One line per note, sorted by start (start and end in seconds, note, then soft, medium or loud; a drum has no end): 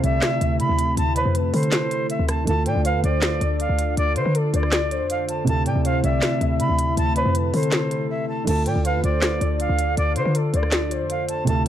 0.00 0.22 C2 loud
0.00 2.42 C3 medium
0.00 2.43 D3 medium
0.00 2.43 A3 medium
0.00 2.44 A3 medium
0.00 2.44 C4 medium
0.00 2.44 E4 medium
0.00 2.45 A4 medium
0.00 0.39 D5 medium
0.00 0.57 E5 loud
0.00 closed hi-hat medium
0.22 snare loud
0.22 clap loud
0.22 closed hi-hat medium
0.41 0.61 D2 loud
0.41 0.94 E5 loud
0.41 closed hi-hat medium
0.60 0.69 D3 loud
0.60 0.95 B5 medium
0.60 closed hi-hat medium
0.69 0.96 D2 loud
0.79 closed hi-hat medium
0.97 1.24 D2 loud
0.97 1.15 A5 loud
0.97 closed hi-hat medium
1.16 1.34 B4 medium
1.16 1.34 C5 medium
1.16 closed hi-hat medium
1.25 1.52 F2 loud
1.35 1.53 B4 medium
1.35 closed hi-hat medium
1.53 2.17 D3 loud
1.53 2.43 A4 medium
1.53 2.07 C5 medium
1.53 closed hi-hat medium
1.53 open hi-hat medium
1.63 closed hi-hat medium
1.72 snare loud
1.72 clap loud
1.72 closed hi-hat medium
1.91 closed hi-hat medium
2.10 2.27 E5 medium
2.10 closed hi-hat medium
2.19 2.46 D2 loud
2.29 2.46 A5 medium
2.29 cross-stick loud
2.29 closed hi-hat medium
2.44 2.68 D2 loud
2.44 5.42 D3 medium
2.44 8.43 D3 medium
2.44 5.43 A3 medium
2.44 5.44 D4 medium
2.44 5.44 F4 medium
2.44 5.44 A4 medium
2.44 2.65 A5 loud
2.44 closed hi-hat medium
2.50 5.45 A4 medium
2.66 2.75 A2 loud
2.66 2.84 D5 medium
2.66 2.84 G5 medium
2.66 closed hi-hat medium
2.76 2.96 D2 loud
2.85 3.03 B4 medium
2.85 3.02 F5 medium
2.85 closed hi-hat medium
2.94 3.03 E2 loud
3.04 3.40 D2 loud
3.04 3.39 C5 medium
3.04 3.57 D5 medium
3.04 closed hi-hat medium
3.22 snare loud
3.22 clap loud
3.22 closed hi-hat medium
3.41 3.68 D2 loud
3.41 3.94 D5 medium
3.41 closed hi-hat medium
3.60 3.95 F5 medium
3.60 closed hi-hat medium
3.69 3.96 D2 loud
3.79 closed hi-hat medium
3.97 4.18 D2 loud
3.97 4.15 D5 loud
3.97 closed hi-hat medium
4.16 4.25 D3 loud
4.16 4.34 B4 medium
4.16 4.34 C5 medium
4.16 closed hi-hat medium
4.26 4.53 D3 loud
4.35 4.53 A4 medium
4.35 closed hi-hat medium
4.54 5.02 D2 loud
4.54 4.89 D5 medium
4.54 5.07 D5 medium
4.54 closed hi-hat medium
4.63 cross-stick medium
4.72 snare loud
4.72 clap loud
4.72 closed hi-hat medium
4.91 5.44 C5 medium
4.91 closed hi-hat medium
5.01 5.45 F2 loud
5.10 5.28 F5 medium
5.10 closed hi-hat medium
5.29 5.46 A5 medium
5.29 closed hi-hat medium
5.45 5.68 D2 loud
5.45 8.42 C3 medium
5.45 8.43 A3 medium
5.45 8.44 A3 medium
5.45 8.44 C4 medium
5.45 8.44 E4 medium
5.45 5.65 A5 loud
5.45 closed hi-hat medium
5.50 8.45 A4 medium
5.66 5.75 A2 loud
5.66 5.84 D5 medium
5.66 5.84 G5 medium
5.66 closed hi-hat medium
5.76 6.03 D2 loud
5.85 6.03 C5 medium
5.85 6.02 F5 loud
5.85 closed hi-hat medium
6.04 6.22 C2 loud
6.04 6.39 D5 medium
6.04 6.57 E5 loud
6.04 closed hi-hat medium
6.22 snare loud
6.22 clap loud
6.22 closed hi-hat medium
6.41 6.61 D2 loud
6.41 6.94 E5 loud
6.41 closed hi-hat medium
6.60 6.69 D3 loud
6.60 6.95 B5 medium
6.60 closed hi-hat medium
6.69 6.96 D2 loud
6.79 closed hi-hat medium
6.97 7.24 D2 loud
6.97 7.15 A5 loud
6.97 closed hi-hat medium
7.16 7.34 B4 medium
7.16 7.34 C5 medium
7.16 closed hi-hat medium
7.25 7.52 F2 loud
7.35 7.53 B4 medium
7.35 closed hi-hat medium
7.54 8.08 D3 loud
7.54 8.43 A4 medium
7.54 8.07 C5 medium
7.54 closed hi-hat medium
7.54 open hi-hat medium
7.63 closed hi-hat medium
7.72 snare loud
7.72 clap loud
7.72 closed hi-hat medium
7.91 closed hi-hat medium
8.10 8.27 E5 medium
8.29 8.46 A5 medium
8.45 8.68 D2 loud
8.45 11.42 D3 medium
8.45 11.68 D3 medium
8.45 11.43 A3 medium
8.45 11.44 D4 medium
8.45 11.44 F4 medium
8.45 11.44 A4 medium
8.45 8.65 A5 loud
8.45 closed hi-hat medium
8.45 crash loud
8.50 11.45 A4 medium
8.66 8.75 A2 loud
8.66 8.84 D5 medium
8.66 8.84 G5 medium
8.66 closed hi-hat medium
8.76 8.96 D2 loud
8.85 9.03 B4 medium
8.85 9.03 F5 medium
8.85 closed hi-hat medium
8.94 9.03 E2 loud
9.04 9.40 D2 loud
9.04 9.39 C5 medium
9.04 9.57 D5 medium
9.04 closed hi-hat medium
9.22 snare loud
9.22 clap loud
9.22 closed hi-hat medium
9.41 9.68 D2 loud
9.41 9.94 D5 medium
9.41 closed hi-hat medium
9.60 9.95 F5 medium
9.60 closed hi-hat medium
9.69 9.96 D2 loud
9.79 closed hi-hat medium
9.97 10.18 D2 loud
9.97 10.15 D5 loud
9.97 closed hi-hat medium
10.16 10.25 D3 loud
10.16 10.34 B4 medium
10.16 10.34 C5 medium
10.16 closed hi-hat medium
10.26 10.53 D3 loud
10.35 10.53 A4 medium
10.35 closed hi-hat medium
10.54 11.02 D2 loud
10.54 10.89 D5 medium
10.54 11.07 D5 medium
10.54 closed hi-hat medium
10.63 cross-stick medium
10.72 snare loud
10.72 clap loud
10.72 closed hi-hat medium
10.91 11.44 C5 medium
10.91 closed hi-hat medium
11.01 11.45 F2 loud
11.10 11.28 F5 medium
11.10 closed hi-hat medium
11.29 11.46 A5 medium
11.29 closed hi-hat medium
11.45 11.68 D2 loud
11.45 11.68 C3 medium
11.45 11.68 A3 medium
11.45 11.68 C4 medium
11.45 11.68 E4 medium
11.45 11.65 A5 loud
11.45 closed hi-hat medium
11.50 11.68 A4 medium